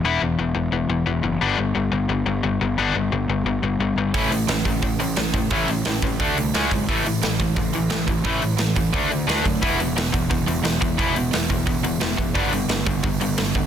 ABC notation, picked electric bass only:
X:1
M:4/4
L:1/8
Q:1/4=175
K:A
V:1 name="Picked electric bass" clef=bass
E,,, E,,, E,,, E,,, E,,, E,,, E,,, F,,, | =G,,, G,,, G,,, G,,, G,,, G,,, G,,, G,,, | =G,,, G,,, G,,, G,,, G,,, G,,, G,,, G,,, | A,,, A,,, A,,, A,,, A,,, A,,, A,,, A,,, |
A,,, A,,, A,,, A,,, D,, =C,, ^C,, G,,, | A,,, A,,, A,,, A,,, A,,, A,,, A,,, A,,, | A,,, A,,, A,,, A,,, D,, D,, D,, F,, | E,,, E,,, E,,, E,,, E,,, E,,, E,,, E,,, |
E,,, E,,, E,,, E,,, E,,, E,,, E,,, F,,, | =G,,, G,,, G,,, G,,, G,,, G,,, G,,, D,, |]